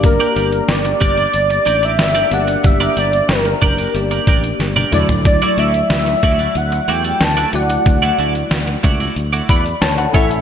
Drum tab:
HH |xxxxxxxxxxxxxxxx|xxxxxxxxxxxxxxxx|xxxxxxxxxxxxxxxx|xxxxxxxxxxxxxxxx|
SD |----o-------o---|----o-------o---|----o-------o---|----o-------o---|
T1 |----------------|-------------o--|----------------|----------------|
T2 |----------------|--------------o-|----------------|----------------|
FT |----------------|---------------o|----------------|----------------|
BD |o-----o---------|o-----o---o-----|o-----o---------|o-----o---o---o-|